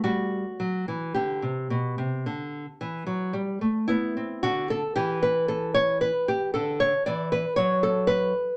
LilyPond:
\new Staff \with { instrumentName = "Nylon-string guitar" } { \time 4/4 \key g \major \tempo 4 = 56 << { fis'4 g'2 r8 e'8 | \key d \major fis'16 a'16 g'16 b'16 a'16 cis''16 b'16 g'16 a'16 cis''16 d''16 b'16 cis''16 a'16 b'8 | } \\ { g8 fis16 e16 d16 c16 b,16 c16 d8 e16 fis16 g16 a16 b16 c'16 | d8 e4. d8 e8 fis4 | } >> }